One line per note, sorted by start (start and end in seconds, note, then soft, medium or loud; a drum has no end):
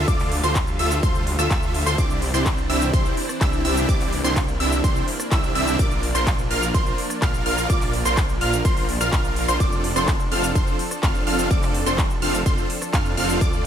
0.00 1.94 D3 medium
0.00 1.94 F4 medium
0.08 0.41 D2 medium
0.08 1.96 G3 medium
0.08 0.30 F4 medium
0.08 0.30 A4 medium
0.08 0.30 D5 medium
0.08 0.30 D6 medium
0.08 kick loud
0.08 ride medium
0.08 shaker medium
0.20 clap soft
0.20 open hi-hat medium
0.20 shaker soft
0.32 open hi-hat loud
0.43 0.77 D2 loud
0.43 0.58 F4 medium
0.43 0.58 A4 medium
0.43 0.58 C5 medium
0.43 0.58 C6 medium
0.43 cross-stick medium
0.43 shaker medium
0.55 kick loud
0.55 clap loud
0.55 ride medium
0.55 shaker medium
0.67 shaker soft
0.79 1.01 D2 loud
0.79 0.93 F4 loud
0.79 0.93 A4 medium
0.79 0.93 E5 loud
0.79 0.93 E6 loud
0.79 open hi-hat loud
0.91 shaker medium
1.03 1.36 D2 loud
1.03 1.23 F4 medium
1.03 1.23 A4 medium
1.03 1.23 C5 medium
1.03 1.23 C6 medium
1.03 kick loud
1.03 ride medium
1.03 shaker medium
1.15 shaker soft
1.27 open hi-hat loud
1.39 1.48 D2 loud
1.39 1.48 F4 medium
1.39 1.48 A4 medium
1.39 1.48 E5 loud
1.39 1.48 E6 loud
1.39 cross-stick medium
1.39 shaker medium
1.51 1.84 D2 medium
1.51 1.83 E6 medium
1.51 kick loud
1.51 clap loud
1.51 ride medium
1.51 shaker medium
1.63 shaker soft
1.74 open hi-hat loud
1.86 1.96 D2 medium
1.86 1.95 F4 medium
1.86 1.95 A4 medium
1.86 1.95 C5 loud
1.86 1.95 C6 medium
1.86 shaker medium
1.98 2.32 C2 loud
1.98 5.75 E3 medium
1.98 3.87 C4 medium
1.98 2.21 C4 medium
1.98 13.37 D4 medium
1.98 2.21 D4 medium
1.98 2.21 E4 medium
1.98 2.21 G4 medium
1.98 2.21 D5 medium
1.98 2.21 D6 medium
1.98 kick loud
1.98 ride medium
1.98 shaker medium
2.10 shaker soft
2.22 open hi-hat loud
2.34 2.67 C2 loud
2.34 2.48 C4 medium
2.34 2.48 D4 medium
2.34 2.48 E4 medium
2.34 2.48 G4 medium
2.34 2.48 C5 medium
2.34 2.48 C6 medium
2.34 cross-stick medium
2.34 shaker medium
2.46 kick loud
2.46 clap loud
2.46 ride medium
2.46 shaker medium
2.58 shaker soft
2.70 2.91 C2 loud
2.70 2.84 C4 loud
2.70 2.84 D4 medium
2.70 2.84 E4 medium
2.70 2.84 G4 medium
2.70 2.84 E5 loud
2.70 2.84 E6 loud
2.70 open hi-hat loud
2.82 shaker medium
2.93 3.11 C2 medium
2.93 3.14 C4 medium
2.93 3.14 D4 medium
2.93 3.14 E4 medium
2.93 3.14 G4 medium
2.93 3.14 C5 medium
2.93 3.14 C6 medium
2.93 kick loud
2.93 ride medium
2.93 shaker medium
3.06 shaker soft
3.17 open hi-hat loud
3.29 cross-stick medium
3.29 shaker medium
3.41 3.63 C2 loud
3.41 3.61 C4 medium
3.41 3.61 D4 medium
3.41 3.61 E4 medium
3.41 3.61 G4 medium
3.41 3.61 E5 medium
3.41 3.61 E6 medium
3.41 kick loud
3.41 clap loud
3.41 ride medium
3.41 shaker medium
3.53 shaker soft
3.65 3.86 C2 loud
3.65 3.86 C4 loud
3.65 3.86 D4 medium
3.65 3.86 E4 loud
3.65 3.86 G4 medium
3.65 3.86 E5 loud
3.65 3.86 E6 loud
3.65 open hi-hat loud
3.77 shaker medium
3.89 4.22 C2 loud
3.89 9.56 A#3 medium
3.89 4.11 C4 medium
3.89 4.11 D4 medium
3.89 4.11 E4 medium
3.89 4.11 G4 medium
3.89 4.11 D5 medium
3.89 4.11 D6 medium
3.89 kick loud
3.89 ride medium
3.89 shaker medium
4.01 clap soft
4.01 open hi-hat medium
4.01 shaker soft
4.13 open hi-hat loud
4.24 4.58 C2 loud
4.24 4.39 C4 medium
4.24 4.39 D4 medium
4.24 4.39 E4 medium
4.24 4.39 G4 medium
4.24 4.39 C5 medium
4.24 4.39 C6 medium
4.24 cross-stick medium
4.24 shaker medium
4.36 kick loud
4.36 clap loud
4.36 ride medium
4.36 shaker medium
4.48 shaker soft
4.60 4.82 C2 loud
4.60 4.74 C4 loud
4.60 4.74 D4 medium
4.60 4.74 E4 medium
4.60 4.74 G4 medium
4.60 4.74 E5 loud
4.60 4.74 E6 loud
4.60 open hi-hat loud
4.72 shaker medium
4.84 5.02 C2 loud
4.84 5.04 C4 medium
4.84 5.04 D4 medium
4.84 5.04 E4 medium
4.84 5.04 G4 medium
4.84 5.04 C5 medium
4.84 5.04 C6 medium
4.84 kick loud
4.84 ride medium
4.84 shaker medium
4.96 shaker soft
5.08 open hi-hat loud
5.20 cross-stick medium
5.20 shaker medium
5.32 5.53 C2 medium
5.32 5.52 C4 medium
5.32 5.52 D4 medium
5.32 5.52 E4 medium
5.32 5.52 G4 medium
5.32 5.52 E5 medium
5.32 5.52 E6 medium
5.32 kick loud
5.32 clap loud
5.32 ride medium
5.32 shaker medium
5.44 shaker soft
5.55 5.77 C2 loud
5.55 5.76 C4 loud
5.55 5.76 D4 medium
5.55 5.76 E4 medium
5.55 5.76 G4 medium
5.55 5.76 E5 loud
5.55 5.76 E6 loud
5.55 open hi-hat loud
5.67 shaker medium
5.79 6.13 A#1 medium
5.79 13.37 F3 medium
5.79 6.02 F4 medium
5.79 6.02 A#4 medium
5.79 6.02 D5 medium
5.79 6.02 D6 medium
5.79 kick loud
5.79 ride medium
5.79 shaker medium
5.91 shaker soft
6.03 open hi-hat loud
6.15 6.48 A#1 loud
6.15 6.29 F4 medium
6.15 6.29 A#4 medium
6.15 6.29 C5 medium
6.15 6.29 C6 medium
6.15 cross-stick medium
6.15 shaker medium
6.27 kick loud
6.27 clap loud
6.27 ride medium
6.27 shaker medium
6.39 shaker soft
6.50 6.72 A#1 loud
6.50 6.65 F4 loud
6.50 6.65 A#4 medium
6.50 6.65 F5 loud
6.50 6.65 F6 loud
6.50 open hi-hat loud
6.63 shaker medium
6.74 6.92 A#1 loud
6.74 6.95 F4 medium
6.74 6.95 A#4 medium
6.74 6.95 C5 medium
6.74 6.95 C6 medium
6.74 kick loud
6.74 ride medium
6.74 shaker medium
6.86 shaker soft
6.98 open hi-hat loud
7.10 cross-stick medium
7.10 shaker medium
7.22 7.44 A#1 loud
7.22 7.42 F4 medium
7.22 7.42 A#4 medium
7.22 7.42 F5 medium
7.22 7.42 F6 medium
7.22 kick loud
7.22 clap loud
7.22 ride medium
7.22 shaker medium
7.34 shaker soft
7.46 7.67 A#1 loud
7.46 7.67 F4 loud
7.46 7.67 A#4 medium
7.46 7.67 F5 loud
7.46 7.67 F6 loud
7.46 open hi-hat loud
7.58 shaker medium
7.70 8.03 A#1 medium
7.70 7.92 F4 medium
7.70 7.92 A#4 medium
7.70 7.92 D5 medium
7.70 7.92 D6 medium
7.70 kick loud
7.70 ride medium
7.70 shaker medium
7.82 clap soft
7.82 open hi-hat medium
7.82 shaker soft
7.93 open hi-hat loud
8.05 8.39 A#1 loud
8.05 8.20 F4 medium
8.05 8.20 A#4 medium
8.05 8.20 C5 medium
8.05 8.20 C6 medium
8.05 cross-stick medium
8.05 shaker medium
8.17 kick loud
8.17 clap loud
8.17 ride medium
8.17 shaker medium
8.29 shaker soft
8.41 8.63 A#1 loud
8.41 8.55 F4 loud
8.41 8.55 A#4 medium
8.41 8.55 F5 loud
8.41 8.55 F6 loud
8.41 open hi-hat loud
8.53 shaker medium
8.65 8.98 A#1 loud
8.65 8.85 F4 medium
8.65 8.85 A#4 medium
8.65 8.85 C5 medium
8.65 8.85 C6 medium
8.65 kick loud
8.65 ride medium
8.65 shaker medium
8.77 open hi-hat medium
8.77 shaker soft
8.89 open hi-hat loud
9.01 9.10 A#1 loud
9.01 9.10 F4 loud
9.01 9.10 A#4 medium
9.01 9.10 F5 loud
9.01 9.10 F6 loud
9.01 cross-stick medium
9.01 shaker medium
9.13 9.46 A#1 medium
9.13 9.45 F4 medium
9.13 9.45 F5 medium
9.13 9.45 F6 loud
9.13 kick loud
9.13 clap loud
9.13 ride medium
9.13 shaker medium
9.25 shaker soft
9.36 open hi-hat loud
9.48 9.58 A#1 loud
9.48 9.57 F4 medium
9.48 9.57 A#4 medium
9.48 9.57 C5 loud
9.48 9.57 C6 medium
9.48 shaker medium
9.60 9.94 F1 loud
9.60 9.83 C4 medium
9.60 9.83 D4 medium
9.60 9.83 F4 medium
9.60 13.37 A4 medium
9.60 9.83 A4 medium
9.60 9.83 D5 medium
9.60 9.83 D6 medium
9.60 kick loud
9.60 ride medium
9.60 shaker medium
9.72 shaker soft
9.84 open hi-hat loud
9.96 10.29 F1 loud
9.96 10.10 C4 medium
9.96 10.10 D4 medium
9.96 10.10 F4 medium
9.96 10.10 A4 medium
9.96 10.10 C5 medium
9.96 10.10 C6 medium
9.96 cross-stick medium
9.96 shaker medium
10.08 kick loud
10.08 clap loud
10.08 ride medium
10.08 shaker medium
10.20 shaker soft
10.32 10.53 F1 loud
10.32 10.46 C4 loud
10.32 10.46 D4 medium
10.32 10.46 F4 medium
10.32 10.46 A4 medium
10.32 10.46 F5 loud
10.32 10.46 F6 loud
10.32 open hi-hat loud
10.44 shaker medium
10.55 10.73 F1 loud
10.55 10.76 C4 medium
10.55 10.76 D4 medium
10.55 10.76 F4 medium
10.55 10.76 A4 medium
10.55 10.76 C5 medium
10.55 10.76 C6 medium
10.55 kick loud
10.55 ride medium
10.55 shaker medium
10.67 shaker soft
10.79 open hi-hat loud
10.91 cross-stick medium
10.91 shaker medium
11.03 11.24 F1 medium
11.03 11.23 C4 medium
11.03 11.23 D4 medium
11.03 11.23 F4 medium
11.03 11.23 A4 medium
11.03 11.23 F5 medium
11.03 11.23 F6 medium
11.03 kick loud
11.03 clap loud
11.03 ride medium
11.03 shaker medium
11.15 shaker soft
11.27 11.48 F1 loud
11.27 11.48 C4 loud
11.27 11.48 D4 medium
11.27 11.48 F4 medium
11.27 11.48 A4 loud
11.27 11.48 F5 loud
11.27 11.48 F6 loud
11.27 open hi-hat loud
11.39 shaker medium
11.51 11.84 F1 medium
11.51 11.73 C4 medium
11.51 11.73 D4 medium
11.51 11.73 F4 medium
11.51 11.73 A4 medium
11.51 11.73 D5 medium
11.51 11.73 D6 medium
11.51 kick loud
11.51 ride medium
11.51 shaker medium
11.63 clap soft
11.63 open hi-hat medium
11.63 shaker soft
11.74 open hi-hat loud
11.86 12.20 F1 loud
11.86 12.01 C4 medium
11.86 12.01 D4 medium
11.86 12.01 F4 medium
11.86 12.01 A4 medium
11.86 12.01 C5 medium
11.86 12.01 C6 medium
11.86 cross-stick medium
11.86 shaker medium
11.98 kick loud
11.98 clap loud
11.98 ride medium
11.98 shaker medium
12.10 shaker soft
12.22 12.43 F1 loud
12.22 12.36 C4 loud
12.22 12.36 D4 medium
12.22 12.36 F4 medium
12.22 12.36 A4 medium
12.22 12.36 F5 loud
12.22 12.36 F6 loud
12.22 open hi-hat loud
12.34 shaker medium
12.46 12.64 F1 loud
12.46 12.66 C4 medium
12.46 12.66 D4 medium
12.46 12.66 F4 medium
12.46 12.66 A4 medium
12.46 12.66 C5 medium
12.46 12.66 C6 medium
12.46 kick loud
12.46 ride medium
12.46 shaker medium
12.58 shaker soft
12.70 open hi-hat loud
12.82 cross-stick medium
12.82 shaker medium
12.93 13.15 F2 loud
12.93 13.14 C4 medium
12.93 13.14 D4 medium
12.93 13.14 F4 medium
12.93 13.14 A4 medium
12.93 13.14 F5 medium
12.93 13.14 F6 medium
12.93 kick loud
12.93 clap loud
12.93 ride medium
12.93 shaker medium
13.06 shaker soft
13.17 13.39 F1 loud
13.17 13.38 C4 loud
13.17 13.38 D4 medium
13.17 13.38 F4 medium
13.17 13.38 A4 medium
13.17 13.38 F5 loud
13.17 13.38 F6 loud
13.17 open hi-hat loud
13.29 shaker medium
13.41 13.67 D2 medium
13.41 13.67 D3 medium
13.41 13.67 A3 medium
13.41 13.67 F4 medium
13.41 13.64 D6 medium
13.41 kick loud
13.41 ride medium
13.41 shaker medium
13.53 shaker soft